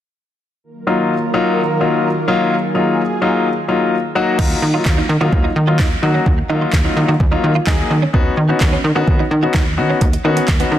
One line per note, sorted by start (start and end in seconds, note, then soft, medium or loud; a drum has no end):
0.64 4.35 D#3 medium
0.64 4.35 F#3 medium
0.64 4.35 A#3 medium
0.64 4.35 F4 medium
0.64 2.49 A#4 medium
0.87 1.13 F#3 medium
0.87 1.13 A#3 medium
0.87 1.13 D#4 medium
0.87 1.13 F4 medium
1.34 1.60 F#3 medium
1.34 1.60 A#3 medium
1.34 1.60 D#4 medium
1.34 1.60 F4 loud
1.80 2.07 F#3 medium
1.80 2.07 A#3 medium
1.80 2.07 D#4 medium
1.80 2.07 F4 medium
2.28 2.54 F#3 medium
2.28 2.54 A#3 medium
2.28 2.54 D#4 medium
2.28 2.54 F4 loud
2.52 4.37 G#4 medium
2.75 3.00 F#3 medium
2.75 3.00 A#3 medium
2.75 3.01 D#4 medium
2.75 3.01 F4 medium
3.21 3.47 F#3 medium
3.21 3.47 A#3 medium
3.21 3.47 D#4 medium
3.21 3.48 F4 medium
3.68 3.94 F#3 medium
3.68 3.94 A#3 medium
3.68 3.94 D#4 medium
3.68 3.94 F4 medium
4.15 4.37 F#3 loud
4.15 4.37 A#3 medium
4.15 4.37 D#4 medium
4.15 4.39 F#4 loud
4.39 4.54 D#2 loud
4.39 4.58 F#3 medium
4.39 4.58 A#3 medium
4.39 4.47 D#4 medium
4.39 4.58 D#4 medium
4.39 4.58 F4 medium
4.39 kick loud
4.39 crash medium
4.62 4.78 D#3 loud
4.62 muted clean electric guitar stroke soft
4.74 5.00 F#3 medium
4.74 5.00 A#3 medium
4.74 5.00 D#4 medium
4.74 4.82 F4 medium
4.74 5.00 F4 medium
4.86 5.01 D#2 medium
4.86 kick loud
4.86 snare medium
4.86 clap loud
4.97 5.06 D#4 medium
5.09 5.17 D#3 loud
5.09 muted clean electric guitar stroke soft
5.21 5.28 D#3 loud
5.21 5.47 F#3 medium
5.21 5.47 A#3 medium
5.21 5.47 D#4 medium
5.21 5.47 F4 loud
5.21 5.29 F#4 medium
5.32 5.48 D#2 loud
5.32 kick loud
5.44 5.53 D#4 medium
5.56 5.81 D#3 loud
5.56 muted clean electric guitar stroke soft
5.67 5.87 F#3 medium
5.67 5.87 A#3 medium
5.67 5.87 D#4 medium
5.67 5.76 F4 medium
5.67 5.87 F4 medium
5.79 5.95 D#2 loud
5.79 5.88 D#4 medium
5.79 kick loud
5.79 snare medium
5.79 clap loud
6.02 6.18 D#3 loud
6.02 6.28 F#3 medium
6.02 6.28 A#3 medium
6.02 6.29 D#4 medium
6.02 6.29 F#4 medium
6.02 muted clean electric guitar stroke soft
6.14 6.23 C#4 medium
6.26 6.41 D#2 loud
6.26 kick loud
6.38 muted clean electric guitar stroke soft
6.49 6.65 D#3 medium
6.49 6.69 F#3 medium
6.49 6.69 A#3 medium
6.49 6.69 D#4 medium
6.49 6.58 D#4 medium
6.49 6.69 F4 loud
6.61 6.70 F4 medium
6.73 6.88 D#2 loud
6.73 kick medium
6.73 snare medium
6.73 clap loud
6.84 7.10 F#3 medium
6.84 7.11 A#3 medium
6.84 7.11 D#4 medium
6.84 6.93 D#4 medium
6.84 7.11 F4 medium
6.97 7.04 D#3 loud
6.97 muted clean electric guitar stroke soft
7.08 7.16 D#3 medium
7.08 7.17 F#4 medium
7.20 7.35 D#2 loud
7.20 kick loud
7.31 7.51 F#3 medium
7.31 7.51 A#3 medium
7.31 7.51 D#4 medium
7.31 7.40 D#4 medium
7.31 7.51 F4 medium
7.43 7.59 D#3 medium
7.43 muted clean electric guitar stroke soft
7.55 7.64 F4 medium
7.67 7.82 D#2 loud
7.67 7.93 F#3 medium
7.67 7.93 A#3 medium
7.67 7.93 D#4 medium
7.67 7.76 D#4 medium
7.67 7.93 G#4 medium
7.67 kick loud
7.67 snare medium
7.67 clap loud
7.90 8.06 D#3 loud
7.90 muted clean electric guitar stroke soft
8.02 8.11 C#4 medium
8.13 8.29 D#2 loud
8.13 8.33 B3 medium
8.13 8.23 B3 medium
8.13 8.33 C#4 medium
8.13 8.33 D#4 medium
8.13 8.33 F#4 loud
8.13 kick loud
8.37 8.52 D#3 medium
8.37 muted clean electric guitar stroke soft
8.49 8.75 B3 medium
8.49 8.75 C#4 medium
8.49 8.75 D#4 medium
8.49 8.58 D#4 medium
8.49 8.75 F#4 medium
8.61 8.76 D#2 loud
8.61 kick loud
8.61 snare loud
8.61 clap loud
8.73 8.81 C#4 medium
8.84 8.92 D#3 loud
8.84 muted clean electric guitar stroke soft
8.95 9.03 D#3 medium
8.95 9.21 B3 medium
8.95 9.21 C#4 medium
8.95 9.22 D#4 medium
8.95 9.22 F#4 loud
8.95 9.04 F#4 medium
9.07 9.23 D#2 loud
9.07 kick loud
9.19 9.28 D#4 medium
9.31 9.46 D#3 loud
9.31 muted clean electric guitar stroke soft
9.42 9.62 B3 medium
9.42 9.62 C#4 medium
9.42 9.62 D#4 medium
9.42 9.51 F#4 medium
9.42 9.62 F#4 medium
9.54 9.79 D#2 loud
9.54 9.63 D#4 medium
9.54 kick loud
9.54 snare medium
9.54 clap loud
9.77 9.93 D#3 loud
9.77 10.03 B3 medium
9.77 10.03 C#4 medium
9.77 10.04 D#4 medium
9.77 10.04 F#4 medium
9.77 muted clean electric guitar stroke soft
9.90 9.98 C#4 medium
10.01 10.16 D#2 loud
10.01 kick loud
10.01 closed hi-hat medium
10.13 muted clean electric guitar stroke soft
10.13 closed hi-hat soft
10.24 10.40 D#3 medium
10.24 10.44 B3 medium
10.24 10.44 C#4 medium
10.24 10.44 D#4 medium
10.24 10.33 D#4 medium
10.24 10.44 F#4 loud
10.36 10.45 B3 medium
10.36 closed hi-hat medium
10.48 10.63 D#2 loud
10.48 kick loud
10.48 snare medium
10.48 clap loud
10.48 closed hi-hat medium
10.60 10.79 B3 medium
10.60 10.68 B3 medium
10.60 10.79 C#4 medium
10.60 10.79 D#4 medium
10.60 10.79 F#4 medium
10.60 closed hi-hat medium
10.72 10.79 D#3 medium
10.72 muted clean electric guitar stroke soft